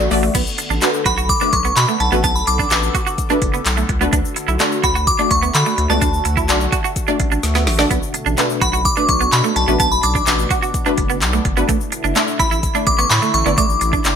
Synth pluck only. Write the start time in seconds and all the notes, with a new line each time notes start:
0.11 A3 F#4 D5
0.82 A3 D4 F#4 B4
1.41 A3 D4 F#4 B4
2.12 A3 D4 F#4 B4
2.71 A3 D4 F#4 B4
3.30 A3 D4 F#4 B4
4.01 A3 D4 F#4 B4
4.60 A3 D4 F#4 D5
5.19 A3 D4 F#4 D5
5.90 A3 D4 F#4 D5
6.49 A3 D4 F#4 D5
7.08 A3 D4 F#4 D5
7.79 A3 D4 F#4 D5
8.38 A3 D4 F#4 B4
8.97 A3 D4 F#4 B4
9.68 A3 D4 F#4 B4
10.27 A3 D4 F#4 B4
10.86 A3 D4 F#4 B4
11.57 A3 D4 F#4 B4
12.16 A3 D4 E4 D5
12.75 A3 D4 E4 D5
13.46 A3 D4 E4 D5
14.05 A3 D4 E4 D5